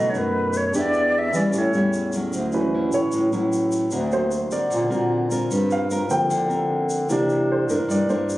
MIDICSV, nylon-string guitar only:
0, 0, Header, 1, 2, 480
1, 0, Start_track
1, 0, Tempo, 397931
1, 888, Time_signature, 4, 2, 24, 8
1, 10107, End_track
2, 0, Start_track
2, 0, Title_t, "Nylon-string guitar"
2, 0, Program_c, 0, 24
2, 0, Note_on_c, 0, 47, 53
2, 0, Note_on_c, 0, 54, 53
2, 0, Note_on_c, 0, 57, 51
2, 0, Note_on_c, 0, 63, 51
2, 124, Note_off_c, 0, 54, 0
2, 128, Note_off_c, 0, 57, 0
2, 132, Note_off_c, 0, 63, 0
2, 177, Note_on_c, 0, 54, 57
2, 180, Note_on_c, 0, 57, 56
2, 183, Note_on_c, 0, 63, 65
2, 855, Note_off_c, 0, 54, 0
2, 855, Note_off_c, 0, 57, 0
2, 855, Note_off_c, 0, 63, 0
2, 861, Note_off_c, 0, 47, 0
2, 899, Note_on_c, 0, 52, 52
2, 903, Note_on_c, 0, 59, 53
2, 907, Note_on_c, 0, 62, 49
2, 912, Note_on_c, 0, 67, 54
2, 1372, Note_off_c, 0, 59, 0
2, 1372, Note_off_c, 0, 62, 0
2, 1377, Note_off_c, 0, 67, 0
2, 1621, Note_off_c, 0, 52, 0
2, 1626, Note_on_c, 0, 55, 56
2, 1636, Note_on_c, 0, 64, 59
2, 1637, Note_on_c, 0, 61, 61
2, 1865, Note_on_c, 0, 45, 51
2, 2059, Note_off_c, 0, 55, 0
2, 2063, Note_off_c, 0, 64, 0
2, 2064, Note_off_c, 0, 61, 0
2, 2107, Note_on_c, 0, 55, 56
2, 2108, Note_on_c, 0, 61, 57
2, 2115, Note_on_c, 0, 64, 66
2, 2539, Note_off_c, 0, 61, 0
2, 2540, Note_off_c, 0, 55, 0
2, 2543, Note_off_c, 0, 64, 0
2, 2587, Note_on_c, 0, 54, 57
2, 2592, Note_on_c, 0, 61, 59
2, 2595, Note_on_c, 0, 64, 60
2, 2792, Note_off_c, 0, 45, 0
2, 2824, Note_on_c, 0, 50, 50
2, 3259, Note_off_c, 0, 54, 0
2, 3261, Note_off_c, 0, 61, 0
2, 3263, Note_off_c, 0, 64, 0
2, 3309, Note_on_c, 0, 54, 57
2, 3310, Note_on_c, 0, 61, 52
2, 3320, Note_on_c, 0, 64, 54
2, 3752, Note_off_c, 0, 50, 0
2, 3775, Note_on_c, 0, 45, 48
2, 3978, Note_off_c, 0, 61, 0
2, 3981, Note_off_c, 0, 54, 0
2, 3985, Note_off_c, 0, 64, 0
2, 4011, Note_on_c, 0, 54, 60
2, 4015, Note_on_c, 0, 61, 53
2, 4019, Note_on_c, 0, 64, 63
2, 4691, Note_off_c, 0, 54, 0
2, 4693, Note_off_c, 0, 61, 0
2, 4694, Note_off_c, 0, 64, 0
2, 4708, Note_off_c, 0, 45, 0
2, 4726, Note_on_c, 0, 50, 54
2, 4728, Note_on_c, 0, 60, 49
2, 4733, Note_on_c, 0, 66, 49
2, 4736, Note_on_c, 0, 70, 58
2, 5204, Note_off_c, 0, 60, 0
2, 5208, Note_off_c, 0, 66, 0
2, 5208, Note_off_c, 0, 70, 0
2, 5444, Note_on_c, 0, 60, 60
2, 5452, Note_on_c, 0, 66, 62
2, 5454, Note_on_c, 0, 70, 65
2, 5657, Note_off_c, 0, 50, 0
2, 5672, Note_on_c, 0, 50, 50
2, 5888, Note_off_c, 0, 60, 0
2, 5892, Note_off_c, 0, 66, 0
2, 5892, Note_off_c, 0, 70, 0
2, 5908, Note_on_c, 0, 60, 62
2, 5914, Note_on_c, 0, 66, 63
2, 5920, Note_on_c, 0, 70, 68
2, 6360, Note_off_c, 0, 60, 0
2, 6361, Note_off_c, 0, 66, 0
2, 6365, Note_off_c, 0, 70, 0
2, 6404, Note_on_c, 0, 60, 65
2, 6408, Note_on_c, 0, 65, 64
2, 6416, Note_on_c, 0, 70, 61
2, 6616, Note_off_c, 0, 50, 0
2, 6640, Note_on_c, 0, 55, 55
2, 7088, Note_off_c, 0, 60, 0
2, 7089, Note_off_c, 0, 65, 0
2, 7093, Note_off_c, 0, 70, 0
2, 7126, Note_on_c, 0, 60, 54
2, 7133, Note_on_c, 0, 65, 57
2, 7138, Note_on_c, 0, 70, 68
2, 7580, Note_off_c, 0, 55, 0
2, 7601, Note_on_c, 0, 50, 55
2, 7605, Note_off_c, 0, 60, 0
2, 7605, Note_off_c, 0, 65, 0
2, 7610, Note_off_c, 0, 70, 0
2, 7824, Note_on_c, 0, 60, 62
2, 7832, Note_on_c, 0, 65, 57
2, 7834, Note_on_c, 0, 70, 70
2, 8518, Note_off_c, 0, 60, 0
2, 8520, Note_off_c, 0, 65, 0
2, 8522, Note_off_c, 0, 70, 0
2, 8540, Note_off_c, 0, 50, 0
2, 8551, Note_on_c, 0, 48, 50
2, 8556, Note_on_c, 0, 58, 58
2, 8564, Note_on_c, 0, 62, 52
2, 8570, Note_on_c, 0, 64, 59
2, 9243, Note_off_c, 0, 58, 0
2, 9248, Note_off_c, 0, 62, 0
2, 9250, Note_off_c, 0, 64, 0
2, 9281, Note_on_c, 0, 58, 66
2, 9290, Note_on_c, 0, 62, 64
2, 9298, Note_on_c, 0, 64, 63
2, 9495, Note_off_c, 0, 48, 0
2, 9510, Note_on_c, 0, 55, 48
2, 9726, Note_off_c, 0, 58, 0
2, 9731, Note_off_c, 0, 62, 0
2, 9732, Note_off_c, 0, 64, 0
2, 9767, Note_on_c, 0, 58, 60
2, 9772, Note_on_c, 0, 62, 61
2, 9773, Note_on_c, 0, 64, 66
2, 10107, Note_off_c, 0, 55, 0
2, 10107, Note_off_c, 0, 58, 0
2, 10107, Note_off_c, 0, 62, 0
2, 10107, Note_off_c, 0, 64, 0
2, 10107, End_track
0, 0, End_of_file